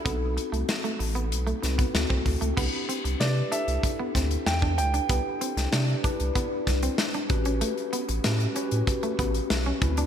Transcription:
<<
  \new Staff \with { instrumentName = "Grand piano" } { \time 4/4 \key c \lydian \tempo 4 = 95 fis''2. r4 | r4 d''8 e''4. g''8 g''8~ | g''4 r2. | r1 | }
  \new Staff \with { instrumentName = "Tine electric piano" } { \time 4/4 \key c \lydian <c' d' dis' fis' a'>4 r4. <c' dis' fis' b'>8 <c' e' fis' a'>4 | <d' e' g' b'>8 r8 <d' e' g' b'>8 <d' e' g' a'>4 r4. | <d' e' g' b'>8 r8 <d' e' g' d''>8 <d' e' g' b'>4 r4 <cis' fis' g' b'>8~ | <cis' fis' g' b'>8 r8 <cis' fis' g' b'>8 <cis' fis' g' b'>4 r4 <c' e' fis' b'>8 | }
  \new Staff \with { instrumentName = "Clean electric guitar" } { \time 4/4 \key c \lydian b16 r8 a16 r16 a16 r16 b16 r16 a16 r16 b16 r16 c'16 r16 a16 | b16 r16 c'16 r8. d'16 r8 b16 c'16 r8 d'16 r16 d'16 | b16 r16 c'16 r8. d'16 r16 b16 r8 c'16 r16 d'16 r16 cis'16 | a16 r16 b16 r8. cis'16 r8 a16 b16 r8 cis'16 r16 d'16 | }
  \new Staff \with { instrumentName = "Sub bass" } { \clef bass \time 4/4 \key c \lydian b,,8. c,16 r8 a,,8 b,,8 c,8 d,16 c,16 d,16 cis,16 | c,16 r8 c,16 c8 r16 c,16 r8 d,8 e,8 cis,8 | c,16 r8 c,16 c8 r16 c,16 r8 c,8 r8 a,,8~ | a,,16 r8 a,,16 a,8 r16 a,16 r8 a,,8 b,,8 d,8 | }
  \new DrumStaff \with { instrumentName = "Drums" } \drummode { \time 4/4 <hh bd>8 hh16 hh16 <hh sn>16 hh16 hho16 hh16 hh16 hh16 <hh sn>16 <hh bd>16 <hh sn>16 bd16 <hho bd>16 hh16 | <cymc bd>8 hh16 hh16 <hh sn>8 hh16 hh16 <hh bd>8 <hh bd sn>16 hh16 <hh sn>16 bd16 hh16 hh16 | <hh bd>8 hh16 <hh sn>16 <hh sn>8 <hh bd>16 hh16 <hh bd>8 <hh bd sn>16 hh16 <hh sn>16 hh16 <hh bd>16 hh16 | hh16 hh16 hh16 hh16 <hh sn>16 hh16 hh16 hh16 <hh bd>16 hh16 <hh bd>16 hh16 <hh sn>8 <hh bd>16 hh16 | }
>>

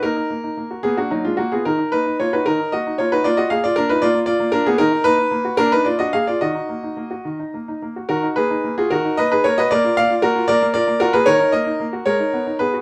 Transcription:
<<
  \new Staff \with { instrumentName = "Grand piano" } { \time 6/8 \key ees \minor \tempo 4. = 75 <ees' bes'>4. <ces' aes'>16 <bes ges'>16 <ges ees'>16 <aes f'>16 <bes ges'>16 <ces' aes'>16 | <ees' bes'>8 <ees' ces''>8 <f' des''>16 <ees' ces''>16 <ees' bes'>8 <ges' ees''>8 <f' des''>16 <ees' ces''>16 | <f' d''>16 <ges' ees''>16 <aes' f''>16 <f' d''>16 <d' bes'>16 <ees' ces''>16 <f' d''>8 <f' d''>8 <d' bes'>16 <ces' aes'>16 | <ees' bes'>8 <ees' ces''>4 <d' bes'>16 <ees' ces''>16 <f' d''>16 <ges' ees''>16 <aes' f''>16 <f' d''>16 |
<ges' ees''>2~ <ges' ees''>8 r8 | <ges' bes'>8 <aes' ces''>8. <f' aes'>16 <ges' bes'>8 <ces'' ees''>16 <aes' ces''>16 <bes' des''>16 <ces'' ees''>16 | <bes' d''>8 <d'' f''>8 <ges' bes'>8 <bes' d''>8 <bes' d''>8 <ges' bes'>16 <aes' ces''>16 | <bes' des''>8 <bes' ees''>4 <bes' des''>4 <aes' ces''>8 | }
  \new Staff \with { instrumentName = "Grand piano" } { \time 6/8 \key ees \minor bes16 ees'16 bes16 ees'16 bes16 ges'16 bes16 d'16 bes16 d'16 r16 f'16 | ees16 ees'16 bes16 ees'16 bes16 ges'16 ees16 ees'16 bes16 ees'16 bes16 ges'16 | bes16 f'16 bes16 r16 bes16 f'16 bes16 bes16 r16 bes16 f'16 bes16 | ees16 ees'16 bes16 ees'16 bes16 ges'16 bes16 d'16 bes16 d'16 bes16 aes'16 |
ees16 ees'16 bes16 ees'16 bes16 ges'16 ees16 ees'16 bes16 ees'16 bes16 ges'16 | ees16 ees'16 bes16 ees'16 bes16 ges'16 ees16 ees'16 bes16 ees'16 bes16 ges'16 | bes16 f'16 bes16 f'16 bes16 f'16 bes16 bes16 f'16 bes16 f'16 bes16 | ees16 ees'16 bes16 ees'16 bes16 ges'16 aes16 ees'16 ces'16 ees'16 ces'16 ges'16 | }
>>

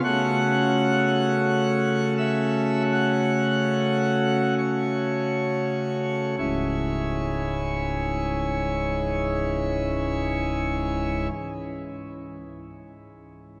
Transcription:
<<
  \new Staff \with { instrumentName = "Pipe organ" } { \time 4/4 \key cis \minor \tempo 4 = 33 fis''4. e''8 fis''4 cis''4 | <cis,, cis, gis, e gis cis' e' cis''>1 | }
  \new Staff \with { instrumentName = "Pipe organ" } { \time 4/4 \key cis \minor <cis a cis' fis'>1 | r1 | }
>>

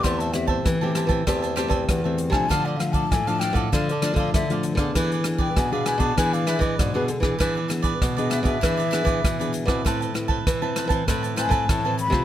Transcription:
<<
  \new Staff \with { instrumentName = "Flute" } { \time 4/4 \key a \minor \tempo 4 = 98 c'''16 a''16 e''16 c''16 b'16 g'16 r2 r16 gis''16 | a''16 d''16 f''16 a''16 gis''16 a''16 g''16 fis''16 f''16 a'16 d''16 f''16 e''8 r8 | r8. g''16 gis''16 f''16 gis''16 a''16 gis''16 f''16 e''16 dis''16 d''16 b'16 r8 | r4 r16 dis''16 e''16 e''2~ e''16~ |
e''16 r2 r16 gis''8 a''8 b''8 | }
  \new Staff \with { instrumentName = "Cavaquinho" } { \time 4/4 \key a \minor <g' c'' e'' a''>16 <c'' e'' a''>16 r16 <c'' e'' a''>8 <c'' e'' a''>16 <g' c'' e'' a''>16 <c'' e'' a''>16 <g' c'' e'' a''>16 <c'' e'' a''>16 <g' c'' e'' a''>16 <c'' e'' a''>8 <c'' e'' a''>16 r16 <c'' e'' a''>16 | <d' a' d'' f''>16 <a' d'' f''>16 r16 <a' d'' f''>8 <a' d'' f''>16 <d' a' d'' f''>16 <a' d'' f''>16 <d' a' d'' f''>16 <a' d'' f''>16 <d' a' d'' f''>16 <a' d'' f''>8 <a' d'' f''>16 r16 <a' d'' f''>16 | <e' gis' b' d''>16 <gis' b' d''>16 r16 <gis' b' d''>8 <gis' b' d''>16 <e' gis' b' d''>16 <gis' b' d''>16 <e' gis' b' d''>16 <gis' b' d''>16 <e' gis' b' d''>16 <gis' b' d''>8 <gis' b' d''>16 r16 <gis' b' d''>16 | <e' gis' b' d''>16 <gis' b' d''>16 r16 <gis' b' d''>8 <gis' b' d''>16 <e' gis' b' d''>16 <gis' b' d''>16 <e' gis' b' d''>16 <gis' b' d''>16 <e' gis' b' d''>16 <gis' b' d''>8 <gis' b' d''>16 r16 <gis' b' d''>16 |
<a' b' c'' a''>16 <b' c'' a''>16 r16 <b' c'' a''>8 <b' c'' a''>16 <a' b' c'' a''>16 <b' c'' a''>16 <a' b' c'' a''>16 <b' c'' a''>16 <a' b' c'' a''>16 <b' c'' a''>8 <b' c'' a''>16 r16 <b' c'' a''>16 | }
  \new Staff \with { instrumentName = "Nylon-string guitar" } { \time 4/4 \key a \minor << { <a c' g'>8 <a c' g'>8. <a c' g'>8 <a c' g'>16 <a c' g'>8 <a c' g'>8. <a c' g'>8 <f a d'>16~ | <f a d'>8 <f a d'>8. <f a d'>8 <f a d'>16 <f a d'>16 r16 <f a d'>8. <f a d'>8 <b d' gis'>16~ | <b d' gis'>8 <b d' gis'>8. <b d' gis'>8 <b d' gis'>16 <b d' gis'>8 <b d' gis'>8. <b d' gis'>8 <b d' gis'>16 | <b d' gis'>16 r16 <b d' gis'>8 r16 <b d' gis'>8 <b d' gis'>16 <b d' gis'>16 r16 <b d' gis'>8 r16 <b d' gis'>8 <c' e' b'>16~ |
<c' e' b'>8 <c' e' b'>8 r16 <c' e' b'>8 <c' e' b'>16 <c' e' b'>8 <c' e' b'>8. <c' e' b'>8 <a c' f'>16 | } \\ { e4 e4 e4 e4 | d4 a,4 d4 a,4 | e4 b,4 e4 b,4 | e4 b,4 e4 b,4 |
a4 e4 a4 e4 | } >> }
  \new Staff \with { instrumentName = "Nylon-string guitar" } { \clef bass \time 4/4 \key a \minor e,4 e8. e16 e,8. e,16 e,8. c16 | d4 a,8. a,16 d8. d16 d8. d16 | e4 b,8. b,16 e8. e16 gis,16 b,16 d16 e16 | e4 b,8. b,16 e8. e16 e8. b,16 |
a,4 e8. e16 a,8. a,16 a,8. c16 | }
  \new DrumStaff \with { instrumentName = "Drums" } \drummode { \time 4/4 <hh bd ss>16 hh16 <hh ss>16 bd16 <hh bd ss>8 <hh ss>16 <hh bd>16 <hh bd ss>16 hh16 <hh ss>16 <hh bd>16 <hh bd ss>8 hh16 <bd ss>16 | <hh bd ss>8 <hh ss>16 <hh bd>16 <hh bd ss>16 hh16 <hh ss>16 <hh bd>16 <hh bd ss>16 hh16 <hh ss>16 <hh bd>16 <hh bd ss>16 hh16 hh16 <hh bd ss>16 | <hh bd ss>16 hh16 <hh ss>16 bd16 <hh bd ss>8 <hh ss>16 <hh bd>16 <hh bd ss>16 hh16 <hh ss>16 <hh bd>16 <hh bd ss>8 hh16 <bd ss>16 | <hh bd ss>8 <hh ss>16 <hh bd>16 <hh bd ss>16 hh16 <hh ss>16 <hh bd>16 <hh bd ss>16 hh16 <hh ss>16 <hh bd>16 <hh bd ss>16 hh16 hh16 <hh bd ss>16 |
<hh bd ss>16 hh16 <hh ss>16 bd16 <hh bd ss>8 <hh ss>16 <hh bd>16 <hh bd ss>16 hh16 <hh ss>16 <hh bd>16 <hh bd ss>8 hh16 <bd ss>16 | }
>>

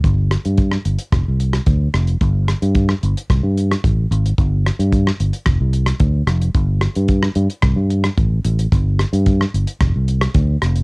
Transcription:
<<
  \new Staff \with { instrumentName = "Fingered electric bass" } { \clef bass \time 4/4 \key f \lydian \tempo 4 = 111 g,,8. g,8. g,,16 r16 f,,16 c,8. d,8 f,,8 | g,,8. g,8. g,,16 r16 c,16 g,8. a,,8 aes,,8 | g,,8. g,8. g,,16 r16 f,,16 c,8. d,8 f,,8 | g,,8. g,8. g,16 r16 c,16 g,8. a,,8 a,,8 |
g,,8. g,8. g,,16 r16 f,,16 c,8. d,8 f,,8 | }
  \new DrumStaff \with { instrumentName = "Drums" } \drummode { \time 4/4 <hh bd>8 <hh ss>16 hh16 <hh bd>16 ss16 hh16 hh16 <hh bd ss>8 hh16 <hh ss>16 <hh bd>8 <hh ss>16 hh16 | <hh bd>8 <hh ss>16 hh16 <hh bd>16 ss16 hh16 hh16 <hh bd ss>8 hh16 <hh ss>16 <hh bd>8 hh16 hh16 | <hh bd>8 <hh ss>16 hh16 <hh bd>16 ss16 hh16 hh16 <hh bd ss>8 hh16 <hh ss>16 <hh bd>8 <hh ss>16 hh16 | <hh bd>8 <hh ss>16 hh16 <hh bd>16 ss16 hh16 hh16 <hh bd ss>8 hh16 <hh ss>16 <hh bd>8 hh16 hh16 |
<hh bd>8 <hh ss>16 hh16 <hh bd>16 ss16 hh16 hh16 <hh bd ss>8 hh16 <hh ss>16 <hh bd>8 <hh ss>16 hh16 | }
>>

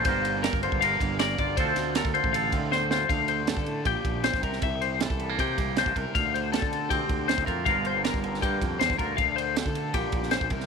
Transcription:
<<
  \new Staff \with { instrumentName = "Clean electric guitar" } { \time 4/4 \key d \minor \tempo 4 = 158 c''4 bes'8 c''8 f''4 d''8 d''8 | c''4 bes'8 c''8 f''4 c''8 c''8 | f''8 c''8 a'4 g'4 c''8 bes'8 | e''8 c''8 a'4 g'4 c''8 bes'8 |
f''8 c''8 a'4 g'4 c''8 bes'8 | f''8 c''8 bes'4 g'4 c''8 bes'8 | f''8 c''8 a'4 g'4 c''8 bes'8 | }
  \new Staff \with { instrumentName = "Clean electric guitar" } { \clef bass \time 4/4 \key d \minor << { <bes f' bes'>4 bes'8 f'8 bes'8 bes8 bes'8 f'8 | <c' f' a'>4 a'8 f'8 a'8 c'8 c''8 f'8 | r1 | r4. g16 bes4~ bes16 d'8 r8 |
r2 c'4. f'8 | <d bes f' bes'>2 bes4. f'8 | r1 | } \\ { <g, d>4. d4 d4. | d,4. d4 a,4. | d,4 g,8 a,8 bes,4. c8~ | c4 e4. c4 c8 |
d,4. d4. a,4 | g,4. d4. d4 | d,4. d8 bes,4. c8 | } >> }
  \new Staff \with { instrumentName = "Fingered electric bass" } { \clef bass \time 4/4 \key d \minor g,,4~ g,,16 g,,8 g,,8. g,,4 g,,8 | d,8 d,8. d,16 r16 a,,8. d,4. | d,4~ d,16 d8. bes,,16 r16 bes,,8. bes,,16 c,8 | c,4~ c,16 c,8. c8 c,8. c,16 c,16 r16 |
d,4~ d,16 d8. d,16 r16 d,8. d,16 f,8 | g,,4~ g,,16 g,,8. g,8 f,8 e,8 d,8 | d,4~ d,16 d8. bes,,16 r16 bes,,8. bes,,16 c,8 | }
  \new DrumStaff \with { instrumentName = "Drums" } \drummode { \time 4/4 <bd cymr>8 cymr8 <cymr sn>16 bd16 cymr16 bd16 cymr8 <bd cymr>8 <cymr sn>8 <bd cymr>8 | <bd cymr>8 <cymr sn>8 <cymr sn>16 bd16 cymr16 bd16 cymr8 <bd cymr>8 sn8 sn8 | <bd cymr>8 cymr8 <cymr sn>16 bd16 cymr8 <bd cymr>8 <bd cymr>8 <cymr sn>16 <bd sn>16 <bd cymr>16 sn16 | <bd cymr>8 cymr8 <cymr sn>16 bd16 cymr8 <bd cymr>8 <bd cymr>8 <cymr sn>16 bd16 <bd cymr>8 |
<bd cymr>8 cymr8 <cymr sn>16 bd16 cymr8 <bd cymr>8 <bd cymr>8 <cymr sn>16 bd16 <bd cymr>8 | <bd cymr>8 cymr8 <cymr sn>16 bd16 cymr16 sn16 <bd cymr>8 <bd cymr>8 <cymr sn>16 bd16 <bd cymr>8 | <bd cymr>8 cymr8 <cymr sn>16 bd16 cymr8 <bd cymr>8 <bd cymr>16 sn16 <cymr sn>16 bd16 <bd cymr>16 sn16 | }
>>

